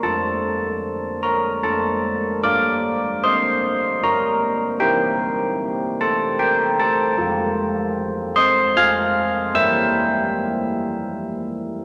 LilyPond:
\new Staff \with { instrumentName = "Church bells" } { \time 3/4 \key d \minor \tempo 4 = 76 << { <a' a''>4. <bes' bes''>8 <a' a''>4 | <d'' d'''>4 <c'' c'''>4 <bes' bes''>4 | <g' g''>4. <a' a''>8 <g' g''>8 <a' a''>8~ | <a' a''>4. <c'' c'''>8 <f'' f'''>4 |
<e'' e'''>2~ <e'' e'''>8 r8 | } \\ { <f d'>2 <f d'>4 | <g d' bes'>2 <g d'>4 | <c' e' bes'>2. | <f f' a'>2 <f f' a'>4 |
<g e' bes'>2. | } >> }